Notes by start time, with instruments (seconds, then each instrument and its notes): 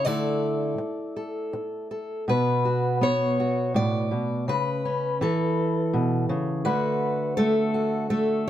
0.05 steel-string acoustic guitar D3 A3 E4 A4 D5
0.78 muted steel-string acoustic guitar stroke
1.16 steel-string acoustic guitar A4
1.53 muted steel-string acoustic guitar stroke
1.91 steel-string acoustic guitar A4
2.28 steel-string acoustic guitar B2 B4
2.65 steel-string acoustic guitar F#4
3.01 steel-string acoustic guitar B3 C#5
3.40 steel-string acoustic guitar F#4
3.74 steel-string acoustic guitar A2 D5
4.11 steel-string acoustic guitar B2
4.48 steel-string acoustic guitar C#3 B4
4.85 steel-string acoustic guitar C#4
5.21 steel-string acoustic guitar E3 A4
5.94 steel-string acoustic guitar B2
6.29 steel-string acoustic guitar C#3
6.65 steel-string acoustic guitar D3 A3 F#4 B4
7.37 steel-string acoustic guitar A3 A4
7.74 steel-string acoustic guitar F#4
8.10 steel-string acoustic guitar A3 A4